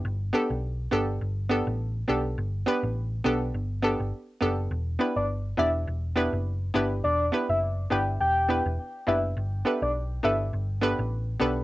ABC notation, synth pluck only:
X:1
M:4/4
L:1/8
Q:"Swing 16ths" 1/4=103
K:Em
V:1 name="Synth pluck"
z [B,DGA] z [B,DGA] z [B,DGA] z [B,DGA] | z [B,DGB] z [B,DGA] z [B,DGA] z [B,DGA] | z [B,DEGB] z [B,DEGd] z [B,DEGB] z [B,DEGB] | z [B,DEGB] z [B,DEGB] z [B,DEGB] z [B,DEGB] |
z [B,DGAB] z [B,DGAB] z [B,DGAB] z [B,DGAB] |]